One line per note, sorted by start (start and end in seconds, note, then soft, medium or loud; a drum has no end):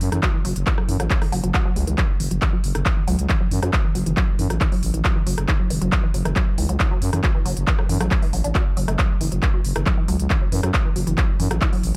0.01 0.10 F#2 medium
0.01 open hi-hat loud
0.12 0.20 F#2 medium
0.12 0.16 E3 medium
0.12 cross-stick medium
0.12 closed hi-hat medium
0.23 0.27 F#3 medium
0.23 kick loud
0.23 clap loud
0.23 closed hi-hat medium
0.34 0.38 E3 medium
0.45 0.53 F#1 medium
0.45 0.49 F#3 loud
0.45 open hi-hat loud
0.56 0.64 F#1 medium
0.56 closed hi-hat medium
0.67 0.71 E3 medium
0.67 kick loud
0.67 clap loud
0.67 closed hi-hat medium
0.78 0.82 F#3 medium
0.78 cross-stick medium
0.89 0.97 F#2 loud
0.89 0.93 E3 medium
0.89 open hi-hat loud
1.00 1.08 A1 medium
1.00 1.04 F#3 loud
1.00 cross-stick medium
1.00 closed hi-hat medium
1.11 kick loud
1.11 clap loud
1.11 closed hi-hat medium
1.22 1.26 E3 medium
1.22 cross-stick medium
1.22 open hi-hat medium
1.32 1.41 F#1 medium
1.32 1.36 F#3 loud
1.32 open hi-hat loud
1.44 1.52 F#1 medium
1.44 1.47 F#3 medium
1.44 closed hi-hat medium
1.54 1.58 F#4 loud
1.54 kick loud
1.54 clap loud
1.54 closed hi-hat medium
1.65 1.69 F#3 loud
1.76 1.85 C#2 medium
1.76 1.80 G#3 medium
1.76 open hi-hat loud
1.87 1.96 C#2 medium
1.87 1.90 E3 medium
1.87 closed hi-hat medium
1.98 2.02 F#3 loud
1.98 kick loud
1.98 clap loud
1.98 closed hi-hat medium
2.20 2.29 F#1 medium
2.20 2.24 E3 medium
2.20 open hi-hat loud
2.31 2.39 F#1 medium
2.31 2.35 F#3 medium
2.31 closed hi-hat medium
2.42 2.46 E3 medium
2.42 kick loud
2.42 clap loud
2.42 closed hi-hat medium
2.53 2.57 F#3 loud
2.64 2.72 F#1 medium
2.64 open hi-hat loud
2.75 2.83 F#1 medium
2.75 2.79 E3 medium
2.75 cross-stick medium
2.75 closed hi-hat medium
2.86 2.90 F#3 medium
2.86 kick loud
2.86 clap loud
2.86 closed hi-hat medium
2.97 3.01 E3 medium
3.08 3.16 C#2 loud
3.08 3.12 F#3 loud
3.08 open hi-hat loud
3.19 3.27 C#2 medium
3.19 closed hi-hat medium
3.29 3.34 E3 medium
3.29 kick loud
3.29 clap loud
3.29 closed hi-hat medium
3.41 3.45 F#3 medium
3.51 3.60 F#2 loud
3.51 3.55 E3 medium
3.51 open hi-hat loud
3.63 3.71 F#2 medium
3.63 3.66 F#3 loud
3.63 cross-stick medium
3.63 closed hi-hat medium
3.73 kick loud
3.73 clap loud
3.73 closed hi-hat medium
3.84 3.88 E3 medium
3.95 4.04 F#1 medium
3.95 3.99 F#3 medium
3.95 open hi-hat loud
4.06 4.15 F#1 medium
4.06 4.10 E3 medium
4.06 closed hi-hat medium
4.17 4.21 F#3 loud
4.17 kick loud
4.17 clap loud
4.17 closed hi-hat medium
4.39 4.48 F#2 loud
4.39 4.43 E3 medium
4.39 open hi-hat loud
4.50 4.58 A1 medium
4.50 4.54 F#3 medium
4.50 cross-stick medium
4.50 closed hi-hat medium
4.61 4.65 E3 medium
4.61 kick loud
4.61 clap loud
4.61 closed hi-hat medium
4.72 4.76 F#3 loud
4.72 open hi-hat medium
4.83 4.91 A1 medium
4.83 open hi-hat loud
4.94 5.02 A1 medium
4.94 4.98 E3 medium
4.94 closed hi-hat medium
5.05 5.09 F#3 medium
5.05 kick loud
5.05 clap loud
5.05 closed hi-hat medium
5.16 5.20 E3 medium
5.27 5.35 F#1 loud
5.27 5.31 F#3 loud
5.27 open hi-hat loud
5.38 5.46 F#1 medium
5.38 cross-stick medium
5.38 closed hi-hat medium
5.48 5.53 E3 medium
5.48 kick loud
5.48 clap loud
5.48 closed hi-hat medium
5.60 5.64 F#3 medium
5.70 5.79 F#1 medium
5.70 5.74 E3 medium
5.70 open hi-hat loud
5.82 5.90 F#1 medium
5.82 5.85 F#3 loud
5.82 closed hi-hat medium
5.92 kick loud
5.92 clap loud
5.92 closed hi-hat medium
6.04 6.07 E3 medium
6.14 6.23 F#1 loud
6.14 6.18 F#3 medium
6.14 open hi-hat loud
6.25 6.34 F#1 medium
6.25 6.29 E3 medium
6.25 cross-stick medium
6.25 closed hi-hat medium
6.36 6.40 F#3 loud
6.36 kick loud
6.36 clap loud
6.36 closed hi-hat medium
6.58 6.67 C#2 loud
6.58 6.62 E3 medium
6.58 open hi-hat loud
6.69 6.77 C#2 medium
6.69 6.73 F#3 medium
6.69 closed hi-hat medium
6.80 6.84 E3 medium
6.80 kick loud
6.80 clap loud
6.80 closed hi-hat medium
6.91 6.95 F#3 loud
7.02 7.10 F#2 loud
7.02 open hi-hat loud
7.13 7.21 F#2 medium
7.13 7.17 E3 medium
7.13 cross-stick medium
7.13 closed hi-hat medium
7.24 7.28 F#3 medium
7.24 kick loud
7.24 clap loud
7.24 closed hi-hat medium
7.35 7.39 E3 medium
7.46 7.54 F#1 loud
7.46 7.50 F#3 loud
7.46 open hi-hat loud
7.57 7.65 F#1 medium
7.57 closed hi-hat medium
7.67 7.71 E3 medium
7.67 kick loud
7.67 clap loud
7.67 closed hi-hat medium
7.79 7.83 F#3 medium
7.79 cross-stick medium
7.89 7.98 F#2 medium
7.89 7.93 E3 medium
7.89 open hi-hat loud
8.01 8.09 A1 medium
8.01 8.04 F#3 loud
8.01 cross-stick loud
8.01 closed hi-hat medium
8.11 kick loud
8.11 clap loud
8.11 closed hi-hat medium
8.22 8.26 E3 medium
8.22 open hi-hat medium
8.33 8.42 A1 loud
8.33 8.37 F#3 medium
8.33 open hi-hat loud
8.44 8.53 A1 medium
8.44 8.48 D4 medium
8.44 closed hi-hat medium
8.55 8.59 F#3 loud
8.55 kick loud
8.55 clap loud
8.55 closed hi-hat medium
8.77 8.86 F#1 medium
8.77 8.81 F#3 loud
8.77 open hi-hat loud
8.88 8.96 F#1 medium
8.88 8.92 A3 medium
8.88 cross-stick medium
8.88 closed hi-hat medium
8.99 9.03 F#3 loud
8.99 kick loud
8.99 clap loud
8.99 closed hi-hat medium
9.21 9.29 F#1 loud
9.21 9.25 E3 medium
9.21 open hi-hat loud
9.32 9.40 F#1 medium
9.32 9.36 F#3 medium
9.32 closed hi-hat medium
9.43 9.47 E3 medium
9.43 kick loud
9.43 clap loud
9.43 closed hi-hat medium
9.54 9.58 F#3 loud
9.65 9.73 F#1 medium
9.65 open hi-hat loud
9.76 9.84 F#1 medium
9.76 9.80 E3 medium
9.76 cross-stick loud
9.76 closed hi-hat medium
9.86 9.90 F#3 medium
9.86 kick loud
9.86 clap loud
9.86 closed hi-hat medium
9.98 10.01 E3 medium
10.08 10.17 C#2 medium
10.08 10.12 F#3 loud
10.08 open hi-hat loud
10.19 10.28 C#2 medium
10.19 closed hi-hat medium
10.30 10.34 E3 medium
10.30 kick loud
10.30 clap loud
10.30 closed hi-hat medium
10.41 10.45 F#3 medium
10.52 10.61 F#2 loud
10.52 10.56 E3 medium
10.52 open hi-hat loud
10.63 10.72 F#2 medium
10.63 10.67 F#3 loud
10.63 cross-stick loud
10.63 closed hi-hat medium
10.74 kick loud
10.74 clap loud
10.74 closed hi-hat medium
10.85 10.89 E3 medium
10.96 11.05 F#1 medium
10.96 11.00 F#3 medium
10.96 open hi-hat loud
11.07 11.15 F#1 medium
11.07 11.11 E3 medium
11.07 closed hi-hat medium
11.18 11.22 F#3 loud
11.18 kick loud
11.18 clap loud
11.18 closed hi-hat medium
11.40 11.48 F#2 medium
11.40 11.44 E3 medium
11.40 open hi-hat loud
11.51 11.59 A1 medium
11.51 11.55 F#3 medium
11.51 cross-stick loud
11.51 closed hi-hat medium
11.62 11.66 E3 medium
11.62 kick loud
11.62 clap loud
11.62 closed hi-hat medium
11.73 11.77 F#3 loud
11.73 open hi-hat medium
11.84 11.92 A1 loud
11.84 open hi-hat loud